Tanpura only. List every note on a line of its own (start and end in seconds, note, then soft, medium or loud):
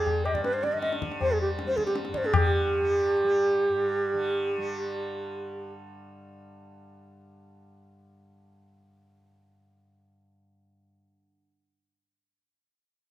0.00 0.26 G2 medium
0.00 0.73 D3 medium
0.00 1.19 G3 medium
0.26 2.08 G2 medium
0.73 2.35 D3 medium
1.19 1.64 G3 medium
1.64 2.80 G3 medium
2.08 3.69 G2 medium
2.35 4.13 D3 medium
2.80 3.23 G3 medium
3.23 4.58 G3 medium
3.69 10.84 G2 medium
4.14 11.29 D3 medium
4.58 11.12 G3 medium